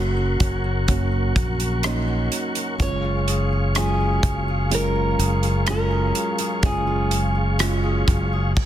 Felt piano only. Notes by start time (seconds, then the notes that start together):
Already playing: C#3 A#3 C#4 F#4
0.88 A#3 C#4 F#4
1.84 A#3 C#4 D#4
2.79 G#3 C#4 F4
3.75 G#3 C#4 F4
4.71 G#3 C#4 F4
5.67 G#3 C#4 F4
6.62 G#3 C#4 F4
7.59 G#3 C#4 F4